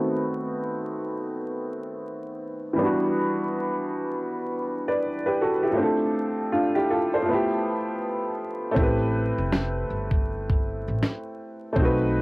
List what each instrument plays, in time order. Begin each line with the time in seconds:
Already playing: upright piano D#3 A3 B3 C4 F#4
2.73 upright piano E3 G3
2.79 upright piano B3 D4
2.85 upright piano F#4
4.88 upright piano B4 D5
5.26 upright piano G4 B4
5.41 upright piano F#4 A4
5.63 upright piano E4 G4
5.71 upright piano F3 A3
5.77 upright piano C4 D4
5.83 upright piano A4
6.52 upright piano D4 F4
6.75 upright piano E4 G4
6.90 upright piano F4 A4
7.14 upright piano A4 C5
7.22 upright piano F3 A3
7.29 upright piano B3 E4
7.34 upright piano G4
8.71 upright piano A3 C4
8.76 upright bass A1, upright piano E4 G4, kick
8.83 upright piano B4
9.38 upright bass F1
9.53 finger snap, snare
9.90 upright bass G1
10.11 kick
10.50 kick
10.88 upright bass A1
11.03 finger snap, snare
11.73 upright piano A3 C4, kick
11.77 upright bass B1, upright piano D#4
11.82 upright piano F#4 B4